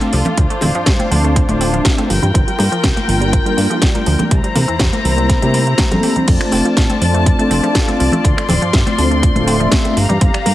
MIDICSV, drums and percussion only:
0, 0, Header, 1, 2, 480
1, 0, Start_track
1, 0, Tempo, 491803
1, 369, Time_signature, 4, 2, 24, 8
1, 10292, End_track
2, 0, Start_track
2, 0, Title_t, "Drums"
2, 9, Note_on_c, 9, 63, 63
2, 12, Note_on_c, 9, 42, 36
2, 107, Note_off_c, 9, 63, 0
2, 110, Note_off_c, 9, 42, 0
2, 124, Note_on_c, 9, 46, 81
2, 221, Note_off_c, 9, 46, 0
2, 244, Note_on_c, 9, 64, 74
2, 247, Note_on_c, 9, 63, 63
2, 249, Note_on_c, 9, 60, 32
2, 252, Note_on_c, 9, 42, 36
2, 342, Note_off_c, 9, 64, 0
2, 344, Note_off_c, 9, 63, 0
2, 347, Note_off_c, 9, 60, 0
2, 350, Note_off_c, 9, 42, 0
2, 366, Note_on_c, 9, 42, 82
2, 367, Note_on_c, 9, 36, 100
2, 463, Note_off_c, 9, 42, 0
2, 465, Note_off_c, 9, 36, 0
2, 492, Note_on_c, 9, 42, 34
2, 589, Note_off_c, 9, 42, 0
2, 596, Note_on_c, 9, 60, 53
2, 604, Note_on_c, 9, 46, 90
2, 611, Note_on_c, 9, 64, 71
2, 694, Note_off_c, 9, 60, 0
2, 702, Note_off_c, 9, 46, 0
2, 709, Note_off_c, 9, 64, 0
2, 730, Note_on_c, 9, 42, 37
2, 828, Note_off_c, 9, 42, 0
2, 842, Note_on_c, 9, 38, 96
2, 847, Note_on_c, 9, 36, 103
2, 847, Note_on_c, 9, 42, 84
2, 939, Note_off_c, 9, 38, 0
2, 944, Note_off_c, 9, 42, 0
2, 945, Note_off_c, 9, 36, 0
2, 971, Note_on_c, 9, 63, 71
2, 974, Note_on_c, 9, 42, 36
2, 1068, Note_off_c, 9, 63, 0
2, 1071, Note_off_c, 9, 42, 0
2, 1089, Note_on_c, 9, 46, 86
2, 1187, Note_off_c, 9, 46, 0
2, 1216, Note_on_c, 9, 42, 37
2, 1313, Note_off_c, 9, 42, 0
2, 1329, Note_on_c, 9, 36, 104
2, 1330, Note_on_c, 9, 42, 83
2, 1426, Note_off_c, 9, 36, 0
2, 1427, Note_off_c, 9, 42, 0
2, 1452, Note_on_c, 9, 63, 91
2, 1457, Note_on_c, 9, 42, 36
2, 1549, Note_off_c, 9, 63, 0
2, 1555, Note_off_c, 9, 42, 0
2, 1569, Note_on_c, 9, 46, 99
2, 1667, Note_off_c, 9, 46, 0
2, 1696, Note_on_c, 9, 42, 37
2, 1794, Note_off_c, 9, 42, 0
2, 1805, Note_on_c, 9, 38, 107
2, 1809, Note_on_c, 9, 63, 80
2, 1810, Note_on_c, 9, 36, 98
2, 1810, Note_on_c, 9, 42, 84
2, 1902, Note_off_c, 9, 38, 0
2, 1907, Note_off_c, 9, 63, 0
2, 1908, Note_off_c, 9, 36, 0
2, 1908, Note_off_c, 9, 42, 0
2, 1936, Note_on_c, 9, 42, 36
2, 1936, Note_on_c, 9, 63, 55
2, 1937, Note_on_c, 9, 60, 43
2, 2034, Note_off_c, 9, 42, 0
2, 2034, Note_off_c, 9, 60, 0
2, 2034, Note_off_c, 9, 63, 0
2, 2051, Note_on_c, 9, 46, 82
2, 2149, Note_off_c, 9, 46, 0
2, 2168, Note_on_c, 9, 64, 65
2, 2179, Note_on_c, 9, 42, 39
2, 2266, Note_off_c, 9, 64, 0
2, 2277, Note_off_c, 9, 42, 0
2, 2292, Note_on_c, 9, 36, 98
2, 2294, Note_on_c, 9, 42, 84
2, 2390, Note_off_c, 9, 36, 0
2, 2391, Note_off_c, 9, 42, 0
2, 2420, Note_on_c, 9, 42, 35
2, 2517, Note_off_c, 9, 42, 0
2, 2524, Note_on_c, 9, 60, 51
2, 2535, Note_on_c, 9, 46, 90
2, 2621, Note_off_c, 9, 60, 0
2, 2633, Note_off_c, 9, 46, 0
2, 2659, Note_on_c, 9, 42, 38
2, 2757, Note_off_c, 9, 42, 0
2, 2768, Note_on_c, 9, 38, 102
2, 2772, Note_on_c, 9, 36, 101
2, 2773, Note_on_c, 9, 42, 86
2, 2866, Note_off_c, 9, 38, 0
2, 2869, Note_off_c, 9, 36, 0
2, 2871, Note_off_c, 9, 42, 0
2, 2900, Note_on_c, 9, 42, 37
2, 2900, Note_on_c, 9, 63, 73
2, 2997, Note_off_c, 9, 42, 0
2, 2998, Note_off_c, 9, 63, 0
2, 3014, Note_on_c, 9, 46, 84
2, 3111, Note_off_c, 9, 46, 0
2, 3139, Note_on_c, 9, 42, 39
2, 3236, Note_off_c, 9, 42, 0
2, 3252, Note_on_c, 9, 36, 106
2, 3252, Note_on_c, 9, 42, 90
2, 3349, Note_off_c, 9, 36, 0
2, 3349, Note_off_c, 9, 42, 0
2, 3379, Note_on_c, 9, 60, 36
2, 3380, Note_on_c, 9, 42, 37
2, 3477, Note_off_c, 9, 60, 0
2, 3478, Note_off_c, 9, 42, 0
2, 3493, Note_on_c, 9, 46, 97
2, 3590, Note_off_c, 9, 46, 0
2, 3619, Note_on_c, 9, 42, 40
2, 3621, Note_on_c, 9, 60, 51
2, 3717, Note_off_c, 9, 42, 0
2, 3718, Note_off_c, 9, 60, 0
2, 3725, Note_on_c, 9, 38, 107
2, 3731, Note_on_c, 9, 36, 103
2, 3731, Note_on_c, 9, 42, 93
2, 3823, Note_off_c, 9, 38, 0
2, 3828, Note_off_c, 9, 42, 0
2, 3829, Note_off_c, 9, 36, 0
2, 3855, Note_on_c, 9, 42, 37
2, 3860, Note_on_c, 9, 63, 60
2, 3952, Note_off_c, 9, 42, 0
2, 3957, Note_off_c, 9, 63, 0
2, 3966, Note_on_c, 9, 46, 82
2, 4064, Note_off_c, 9, 46, 0
2, 4093, Note_on_c, 9, 42, 40
2, 4095, Note_on_c, 9, 63, 60
2, 4096, Note_on_c, 9, 64, 71
2, 4097, Note_on_c, 9, 60, 35
2, 4191, Note_off_c, 9, 42, 0
2, 4192, Note_off_c, 9, 63, 0
2, 4193, Note_off_c, 9, 64, 0
2, 4195, Note_off_c, 9, 60, 0
2, 4209, Note_on_c, 9, 36, 103
2, 4209, Note_on_c, 9, 42, 90
2, 4306, Note_off_c, 9, 42, 0
2, 4307, Note_off_c, 9, 36, 0
2, 4334, Note_on_c, 9, 42, 38
2, 4431, Note_off_c, 9, 42, 0
2, 4445, Note_on_c, 9, 64, 77
2, 4447, Note_on_c, 9, 46, 93
2, 4452, Note_on_c, 9, 60, 56
2, 4543, Note_off_c, 9, 64, 0
2, 4545, Note_off_c, 9, 46, 0
2, 4549, Note_off_c, 9, 60, 0
2, 4573, Note_on_c, 9, 42, 38
2, 4671, Note_off_c, 9, 42, 0
2, 4680, Note_on_c, 9, 38, 111
2, 4685, Note_on_c, 9, 42, 87
2, 4688, Note_on_c, 9, 36, 107
2, 4778, Note_off_c, 9, 38, 0
2, 4783, Note_off_c, 9, 42, 0
2, 4786, Note_off_c, 9, 36, 0
2, 4810, Note_on_c, 9, 63, 78
2, 4815, Note_on_c, 9, 42, 37
2, 4908, Note_off_c, 9, 63, 0
2, 4913, Note_off_c, 9, 42, 0
2, 4930, Note_on_c, 9, 46, 86
2, 5028, Note_off_c, 9, 46, 0
2, 5056, Note_on_c, 9, 42, 41
2, 5154, Note_off_c, 9, 42, 0
2, 5164, Note_on_c, 9, 38, 36
2, 5167, Note_on_c, 9, 36, 106
2, 5169, Note_on_c, 9, 42, 91
2, 5171, Note_on_c, 9, 60, 37
2, 5262, Note_off_c, 9, 38, 0
2, 5265, Note_off_c, 9, 36, 0
2, 5267, Note_off_c, 9, 42, 0
2, 5268, Note_off_c, 9, 60, 0
2, 5293, Note_on_c, 9, 63, 76
2, 5296, Note_on_c, 9, 42, 37
2, 5391, Note_off_c, 9, 63, 0
2, 5393, Note_off_c, 9, 42, 0
2, 5407, Note_on_c, 9, 46, 95
2, 5504, Note_off_c, 9, 46, 0
2, 5534, Note_on_c, 9, 42, 39
2, 5632, Note_off_c, 9, 42, 0
2, 5640, Note_on_c, 9, 38, 113
2, 5646, Note_on_c, 9, 42, 95
2, 5648, Note_on_c, 9, 36, 94
2, 5650, Note_on_c, 9, 63, 90
2, 5738, Note_off_c, 9, 38, 0
2, 5743, Note_off_c, 9, 42, 0
2, 5746, Note_off_c, 9, 36, 0
2, 5747, Note_off_c, 9, 63, 0
2, 5774, Note_on_c, 9, 42, 38
2, 5774, Note_on_c, 9, 60, 46
2, 5777, Note_on_c, 9, 63, 60
2, 5780, Note_on_c, 9, 64, 76
2, 5871, Note_off_c, 9, 42, 0
2, 5872, Note_off_c, 9, 60, 0
2, 5875, Note_off_c, 9, 63, 0
2, 5878, Note_off_c, 9, 64, 0
2, 5886, Note_on_c, 9, 46, 80
2, 5984, Note_off_c, 9, 46, 0
2, 6004, Note_on_c, 9, 60, 31
2, 6012, Note_on_c, 9, 42, 41
2, 6015, Note_on_c, 9, 64, 71
2, 6101, Note_off_c, 9, 60, 0
2, 6110, Note_off_c, 9, 42, 0
2, 6112, Note_off_c, 9, 64, 0
2, 6126, Note_on_c, 9, 42, 89
2, 6126, Note_on_c, 9, 49, 70
2, 6128, Note_on_c, 9, 36, 109
2, 6224, Note_off_c, 9, 42, 0
2, 6224, Note_off_c, 9, 49, 0
2, 6226, Note_off_c, 9, 36, 0
2, 6253, Note_on_c, 9, 26, 59
2, 6253, Note_on_c, 9, 42, 38
2, 6351, Note_off_c, 9, 26, 0
2, 6351, Note_off_c, 9, 42, 0
2, 6360, Note_on_c, 9, 60, 51
2, 6366, Note_on_c, 9, 46, 99
2, 6458, Note_off_c, 9, 60, 0
2, 6464, Note_off_c, 9, 46, 0
2, 6495, Note_on_c, 9, 42, 37
2, 6592, Note_off_c, 9, 42, 0
2, 6605, Note_on_c, 9, 38, 107
2, 6609, Note_on_c, 9, 36, 115
2, 6611, Note_on_c, 9, 42, 84
2, 6703, Note_off_c, 9, 38, 0
2, 6706, Note_off_c, 9, 36, 0
2, 6708, Note_off_c, 9, 42, 0
2, 6730, Note_on_c, 9, 63, 83
2, 6735, Note_on_c, 9, 42, 39
2, 6828, Note_off_c, 9, 63, 0
2, 6833, Note_off_c, 9, 42, 0
2, 6848, Note_on_c, 9, 46, 89
2, 6946, Note_off_c, 9, 46, 0
2, 6974, Note_on_c, 9, 42, 38
2, 7071, Note_off_c, 9, 42, 0
2, 7089, Note_on_c, 9, 36, 112
2, 7090, Note_on_c, 9, 42, 91
2, 7186, Note_off_c, 9, 36, 0
2, 7188, Note_off_c, 9, 42, 0
2, 7216, Note_on_c, 9, 60, 35
2, 7217, Note_on_c, 9, 42, 37
2, 7314, Note_off_c, 9, 60, 0
2, 7315, Note_off_c, 9, 42, 0
2, 7328, Note_on_c, 9, 46, 100
2, 7426, Note_off_c, 9, 46, 0
2, 7452, Note_on_c, 9, 60, 46
2, 7455, Note_on_c, 9, 42, 41
2, 7550, Note_off_c, 9, 60, 0
2, 7553, Note_off_c, 9, 42, 0
2, 7564, Note_on_c, 9, 38, 122
2, 7568, Note_on_c, 9, 36, 103
2, 7569, Note_on_c, 9, 42, 90
2, 7661, Note_off_c, 9, 38, 0
2, 7666, Note_off_c, 9, 36, 0
2, 7667, Note_off_c, 9, 42, 0
2, 7695, Note_on_c, 9, 42, 39
2, 7695, Note_on_c, 9, 63, 54
2, 7792, Note_off_c, 9, 63, 0
2, 7793, Note_off_c, 9, 42, 0
2, 7810, Note_on_c, 9, 46, 85
2, 7908, Note_off_c, 9, 46, 0
2, 7925, Note_on_c, 9, 64, 79
2, 7929, Note_on_c, 9, 63, 59
2, 7931, Note_on_c, 9, 60, 35
2, 7937, Note_on_c, 9, 42, 41
2, 8022, Note_off_c, 9, 64, 0
2, 8026, Note_off_c, 9, 63, 0
2, 8029, Note_off_c, 9, 60, 0
2, 8034, Note_off_c, 9, 42, 0
2, 8048, Note_on_c, 9, 36, 111
2, 8051, Note_on_c, 9, 42, 88
2, 8145, Note_off_c, 9, 36, 0
2, 8149, Note_off_c, 9, 42, 0
2, 8179, Note_on_c, 9, 26, 58
2, 8179, Note_on_c, 9, 42, 38
2, 8277, Note_off_c, 9, 26, 0
2, 8277, Note_off_c, 9, 42, 0
2, 8283, Note_on_c, 9, 60, 47
2, 8283, Note_on_c, 9, 64, 88
2, 8292, Note_on_c, 9, 46, 106
2, 8380, Note_off_c, 9, 60, 0
2, 8380, Note_off_c, 9, 64, 0
2, 8390, Note_off_c, 9, 46, 0
2, 8417, Note_on_c, 9, 42, 39
2, 8514, Note_off_c, 9, 42, 0
2, 8524, Note_on_c, 9, 38, 111
2, 8529, Note_on_c, 9, 36, 114
2, 8529, Note_on_c, 9, 42, 82
2, 8622, Note_off_c, 9, 38, 0
2, 8626, Note_off_c, 9, 36, 0
2, 8627, Note_off_c, 9, 42, 0
2, 8654, Note_on_c, 9, 63, 88
2, 8657, Note_on_c, 9, 42, 36
2, 8751, Note_off_c, 9, 63, 0
2, 8755, Note_off_c, 9, 42, 0
2, 8769, Note_on_c, 9, 46, 95
2, 8867, Note_off_c, 9, 46, 0
2, 8896, Note_on_c, 9, 42, 39
2, 8994, Note_off_c, 9, 42, 0
2, 9009, Note_on_c, 9, 36, 109
2, 9011, Note_on_c, 9, 42, 88
2, 9107, Note_off_c, 9, 36, 0
2, 9108, Note_off_c, 9, 42, 0
2, 9133, Note_on_c, 9, 63, 83
2, 9136, Note_on_c, 9, 42, 36
2, 9231, Note_off_c, 9, 63, 0
2, 9234, Note_off_c, 9, 42, 0
2, 9248, Note_on_c, 9, 46, 107
2, 9346, Note_off_c, 9, 46, 0
2, 9376, Note_on_c, 9, 42, 37
2, 9474, Note_off_c, 9, 42, 0
2, 9483, Note_on_c, 9, 38, 117
2, 9487, Note_on_c, 9, 63, 86
2, 9488, Note_on_c, 9, 42, 91
2, 9489, Note_on_c, 9, 36, 108
2, 9580, Note_off_c, 9, 38, 0
2, 9584, Note_off_c, 9, 63, 0
2, 9586, Note_off_c, 9, 36, 0
2, 9586, Note_off_c, 9, 42, 0
2, 9613, Note_on_c, 9, 60, 49
2, 9613, Note_on_c, 9, 63, 63
2, 9616, Note_on_c, 9, 42, 38
2, 9710, Note_off_c, 9, 60, 0
2, 9711, Note_off_c, 9, 63, 0
2, 9714, Note_off_c, 9, 42, 0
2, 9731, Note_on_c, 9, 46, 89
2, 9828, Note_off_c, 9, 46, 0
2, 9854, Note_on_c, 9, 42, 39
2, 9854, Note_on_c, 9, 64, 71
2, 9952, Note_off_c, 9, 42, 0
2, 9952, Note_off_c, 9, 64, 0
2, 9967, Note_on_c, 9, 42, 88
2, 9969, Note_on_c, 9, 36, 115
2, 10064, Note_off_c, 9, 42, 0
2, 10066, Note_off_c, 9, 36, 0
2, 10095, Note_on_c, 9, 26, 62
2, 10095, Note_on_c, 9, 42, 34
2, 10193, Note_off_c, 9, 26, 0
2, 10193, Note_off_c, 9, 42, 0
2, 10207, Note_on_c, 9, 60, 43
2, 10209, Note_on_c, 9, 46, 107
2, 10292, Note_off_c, 9, 46, 0
2, 10292, Note_off_c, 9, 60, 0
2, 10292, End_track
0, 0, End_of_file